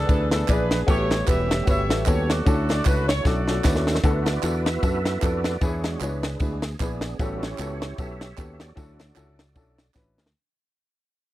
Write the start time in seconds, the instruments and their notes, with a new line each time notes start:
Already playing: tonewheel organ E3 B3 D4 B4, horn section D4 G#4 A4
0.07 fingered electric bass D2, upright piano B3 D4 E4 G#4 B4, kick, ride, tambourine
0.31 upright piano B3 D4 E4 G#4 B4, horn section A4, snare, ride, tambourine
0.47 fingered electric bass A#1, upright piano B3 D4 E4 G#4 D5, horn section D4 G#4 B4, kick, clap, ride, tambourine
0.71 snare, ride, tambourine
0.87 fingered electric bass A1, upright piano A2 B3 C#4 F#4 G4 A4, tonewheel organ G3 A3 B3 C#4 G4, horn section E4 G4 C#5, kick, ride, tambourine
1.11 snare, ride, tambourine
1.27 fingered electric bass E1, upright piano B3 C#4 F#4 G4 B4, horn section G4 C#5 E5, kick, clap, ride, tambourine
1.51 snare, ride, tambourine
1.65 fingered electric bass G1, upright piano B3 C#4 F#4 G4 B4, horn section G4 C#5 E5, kick, ride, tambourine
1.89 fingered electric bass A1, upright piano B3 C#4 F#4 G4 A4, snare, ride, tambourine
2.06 fingered electric bass D#2, upright piano B3 C#4 F#4 G4 A4, horn section C#5, kick, clap, ride, tambourine
2.30 horn section F#4 A4 D5, snare, ride, tambourine
2.46 fingered electric bass D2, upright piano D3 C#4 D4 E4 F#4 A4, tonewheel organ D4 E4 F#4, kick, ride, tambourine
2.69 horn section D5, snare, ride, tambourine
2.85 fingered electric bass C#2, upright piano C#4 D4 E4 F#4 B4, horn section B4, kick, clap, ride, tambourine
3.08 horn section C#5, snare, ride, tambourine
3.25 fingered electric bass B1, upright piano C#4 D4 E4 F#4 A4, horn section F#4 A4 D5, kick, snare, tambourine
3.48 upright piano C#4 D4 E4 F#4 A4, snare, tambourine
3.64 fingered electric bass D#2, upright piano C#4 D4 E4 F#4 B4, tonewheel organ C#4 F#4 A4, kick, snare, clap, tambourine
3.76 snare
3.87 snare, tambourine
3.95 snare
4.03 fingered electric bass D2, upright piano D3 B3 D4 E4 F#4 A4, tonewheel organ E4 F#4 B4, kick, ride, tambourine
4.26 tonewheel organ F#4 B4 D5, snare, ride, tambourine
4.42 fingered electric bass E2, upright piano B3 D4 E4 F#4 A4, clap, ride, tambourine
4.65 tonewheel organ B3 E4 F#4 E5, snare, ride, tambourine
4.82 fingered electric bass F#2, upright piano B3 D4 E4 F#4 A4, tonewheel organ A4 B4 E5, kick, ride, tambourine
5.05 snare, ride, tambourine
5.18 upright piano B3 D4, tonewheel organ E5
5.22 fingered electric bass F2, upright piano E4 F#4 A4, tonewheel organ F#4 B4 D5, kick, clap, ride, tambourine
5.44 snare, ride, tambourine
5.61 fingered electric bass E2, upright piano E3 B3 D4 E4 G#4 B4, tonewheel organ G#4 C#5, kick, ride, tambourine
5.84 tonewheel organ G#3 D4 F#4, snare, ride, tambourine
6.00 fingered electric bass C#2, upright piano B3 D4 E4 G#4 C#5, tonewheel organ D4 G#4 B4, clap, ride, tambourine
6.23 snare, ride, tambourine
6.40 fingered electric bass D2, tonewheel organ G#3 D4 F#4, upright piano B3 D4 E4 G#4 B4, kick, ride, tambourine
6.62 snare, ride, tambourine
6.79 fingered electric bass A#1, upright piano B3 D4 E4 G#4 B4, tonewheel organ B3 D4 G#4, kick, clap, ride, tambourine
7.01 snare, ride, tambourine
7.19 fingered electric bass A1, upright piano A2 B3 C#4 F#4 G4 A4, tonewheel organ G3 B3 C#4 E4 F#4 A4, kick, ride, tambourine
7.43 tonewheel organ E4 G4 C#5, snare, ride, tambourine
7.58 fingered electric bass C#2, upright piano B3 C#4 F#4 G4 A4, clap, ride, tambourine
7.82 snare, ride, tambourine
7.98 fingered electric bass B1, upright piano B3 C#4 F#4 G4 A4, tonewheel organ G4 C#5 E5, kick, ride, tambourine
8.21 snare, ride, tambourine
8.37 fingered electric bass D#2, upright piano B3 C#4 F#4 G4 A4, tonewheel organ E5, kick, clap, ride, tambourine
8.53 tonewheel organ E5
8.60 tonewheel organ F#4 A4 D5, snare, ride, tambourine
8.76 fingered electric bass D2, upright piano D3 C#4 D4 E4 F#4 A4, tonewheel organ F#3 C#4 E4, kick, ride, tambourine
8.99 snare, ride, tambourine
9.15 fingered electric bass C#2, upright piano C#4 D4 E4 F#4 A4, clap, ride, tambourine
9.39 snare, ride, tambourine
9.55 fingered electric bass B1, upright piano C#4 D4 E4 F#4 A4, kick, ride, tambourine
9.78 snare, ride, tambourine
9.94 fingered electric bass A1, upright piano C#4 D4 E4 F#4 B4, kick, snare, clap, tambourine
10.18 fingered electric bass D2, snare, tambourine
10.26 snare